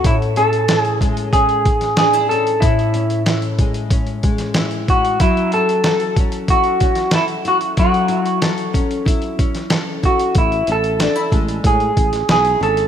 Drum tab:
HH |xxxxxxxxxxxxxxxx|xxxxxxxxxxxxxxxx|xxxxxxxxxxxxxxxx|xxxxxxxxxxxxx-xx|
SD |----o------oo---|----o------oo---|----o------oo---|----o------oo---|
BD |o-----o-o-o-----|o-----o-o-o---o-|o-----o-o-o-----|o-----o-o-o---o-|

HH |xxxxxxxxxxxxxxxx|
SD |----o------oo---|
BD |o-----o-o-o-----|